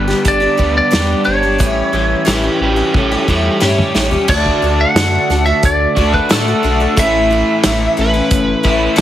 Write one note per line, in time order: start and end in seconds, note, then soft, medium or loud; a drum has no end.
0.00 0.14 G1 medium
0.00 0.59 G2 medium
0.00 0.93 D3 medium
0.00 1.27 G3 medium
0.00 0.58 B3 medium
0.00 0.28 B4 medium
0.08 0.41 G3 soft
0.08 0.41 B3 soft
0.08 0.40 D4 soft
0.08 0.39 G4 soft
0.08 snare soft
0.25 0.47 G1 medium
0.25 1.25 D4 medium
0.25 0.76 D5 medium
0.25 kick medium
0.25 closed hi-hat soft
0.40 0.56 G3 soft
0.40 0.57 B3 soft
0.40 0.58 D4 soft
0.40 0.58 G4 medium
0.57 0.81 D2 medium
0.57 0.90 G3 medium
0.57 0.90 B3 medium
0.57 0.91 D4 medium
0.57 0.91 G4 medium
0.57 kick medium
0.78 1.25 D5 medium
0.91 1.15 E2 medium
0.91 1.26 G2 medium
0.91 1.26 D3 medium
0.91 1.23 G3 medium
0.91 1.24 B3 medium
0.91 1.24 D4 medium
0.91 1.25 G4 medium
0.91 snare loud
0.91 closed hi-hat medium
1.24 1.62 G1 medium
1.24 1.42 G3 medium
1.24 1.42 B3 medium
1.24 1.42 D4 soft
1.24 1.42 G4 medium
1.24 2.74 C#5 medium
1.43 1.58 G3 soft
1.43 1.59 B3 soft
1.43 1.59 D4 soft
1.43 1.59 G4 soft
1.58 1.82 A1 medium
1.58 1.93 A2 medium
1.58 1.92 E3 medium
1.58 1.92 G3 medium
1.58 1.93 C#4 medium
1.58 1.93 G4 medium
1.58 kick medium
1.58 closed hi-hat medium
1.93 2.14 A1 medium
1.93 2.25 E3 soft
1.93 2.25 G3 medium
1.93 2.25 C#4 soft
1.93 2.25 G4 medium
2.25 2.48 A1 medium
2.25 2.43 A2 medium
2.25 2.44 E3 medium
2.25 2.43 G3 medium
2.25 2.42 C#4 medium
2.25 2.42 G4 medium
2.25 2.61 G4 medium
2.25 2.61 B4 medium
2.25 snare loud
2.25 closed hi-hat medium
2.43 2.76 G3 soft
2.43 2.76 C#4 soft
2.43 2.75 G4 soft
2.60 2.82 A1 medium
2.60 3.27 G3 medium
2.60 2.93 G4 medium
2.60 2.95 B4 medium
2.74 3.11 G3 soft
2.74 3.10 C#4 soft
2.74 3.10 G4 soft
2.74 3.57 B4 medium
2.94 3.16 A1 medium
2.94 3.94 C#4 medium
2.94 3.27 E4 medium
2.94 3.29 A4 medium
2.94 kick medium
2.94 high tom soft
3.11 3.27 G3 soft
3.11 3.28 C#4 soft
3.11 3.28 G4 medium
3.28 3.49 E2 medium
3.28 3.59 E3 medium
3.28 3.60 G3 medium
3.28 3.60 C#4 medium
3.28 3.60 E4 medium
3.28 3.60 G4 medium
3.28 3.62 A4 medium
3.28 kick medium
3.60 3.83 G2 medium
3.60 3.95 A2 medium
3.60 3.93 E3 medium
3.60 3.94 G3 medium
3.60 3.95 C#4 medium
3.60 3.95 G4 medium
3.60 4.12 C#5 medium
3.60 snare medium
3.78 mid tom medium
3.95 4.16 A1 medium
3.95 4.12 E3 medium
3.95 4.12 G3 medium
3.95 4.11 C#4 medium
3.95 4.10 G4 medium
3.95 snare medium
4.11 4.28 G3 soft
4.11 4.28 C#4 medium
4.11 4.28 G4 soft
4.11 floor tom medium
4.28 4.52 D2 medium
4.28 4.61 D3 medium
4.28 4.62 A3 medium
4.28 4.63 D4 medium
4.28 4.63 F#4 medium
4.28 4.81 D5 medium
4.28 kick loud
4.28 crash medium
4.46 kick medium
4.62 4.85 D2 medium
4.62 4.95 D3 soft
4.62 4.96 A3 soft
4.62 4.96 D4 medium
4.62 4.96 F#4 medium
4.81 5.43 F#5 loud
4.95 5.18 F#2 medium
4.95 5.29 D3 medium
4.95 5.29 A3 medium
4.95 5.30 D4 medium
4.95 5.30 F#4 medium
4.95 snare loud
4.95 closed hi-hat medium
5.30 5.53 D2 medium
5.30 5.47 D3 medium
5.30 5.46 A3 medium
5.30 5.45 D4 medium
5.30 5.45 F#4 medium
5.30 snare soft
5.46 5.96 A3 soft
5.46 5.96 D4 soft
5.46 5.97 F#4 soft
5.46 5.63 E5 medium
5.63 5.86 D2 medium
5.63 6.11 D5 medium
5.63 kick medium
5.63 closed hi-hat medium
5.96 6.20 D2 medium
5.96 6.28 D3 soft
5.96 6.28 A3 medium
5.96 6.29 D4 medium
5.96 6.29 F#4 medium
5.96 kick medium
6.14 6.31 B4 medium
6.14 kick medium
6.29 6.54 A2 medium
6.29 6.47 D3 medium
6.29 6.47 A3 medium
6.29 6.47 D4 medium
6.29 6.47 F#4 medium
6.29 7.00 A4 medium
6.29 snare loud
6.29 closed hi-hat medium
6.48 6.63 A3 soft
6.48 6.63 D4 soft
6.48 6.64 F#4 soft
6.63 6.87 B1 medium
6.63 6.80 D3 medium
6.63 6.81 A3 medium
6.63 6.80 D4 medium
6.63 6.79 F#4 medium
6.80 6.97 A3 soft
6.80 6.97 D4 soft
6.80 6.97 F#4 medium
6.96 7.43 A1 medium
6.96 7.31 A2 medium
6.96 7.29 E3 medium
6.96 7.31 A3 medium
6.96 7.31 C#4 medium
6.96 7.31 E4 medium
6.96 9.01 E5 medium
6.96 kick loud
6.96 closed hi-hat medium
7.31 7.64 E3 medium
7.31 7.64 A3 soft
7.31 7.64 C#4 medium
7.31 7.65 E4 medium
7.64 7.87 A1 medium
7.64 7.98 A2 medium
7.64 7.96 E3 medium
7.64 7.97 A3 medium
7.64 7.96 C#4 medium
7.64 7.98 E4 medium
7.64 snare loud
7.64 closed hi-hat medium
7.97 8.21 A1 medium
7.97 8.14 E3 medium
7.97 8.14 A3 medium
7.97 8.13 C#4 medium
7.97 8.12 E4 medium
8.01 8.97 B4 loud
8.14 8.62 A3 soft
8.14 8.63 C#4 medium
8.14 8.64 E4 medium
8.31 8.54 F#1 medium
8.31 kick loud
8.31 closed hi-hat medium
8.63 8.88 A1 medium
8.63 8.96 A2 medium
8.63 8.95 E3 medium
8.63 8.95 A3 medium
8.63 8.95 C#4 medium
8.63 8.96 E4 medium
8.63 kick medium
8.96 9.01 A1 medium
8.96 9.01 A2 medium
8.96 9.01 E3 medium
8.96 9.01 A3 medium
8.96 9.01 C#4 medium
8.96 9.01 E4 medium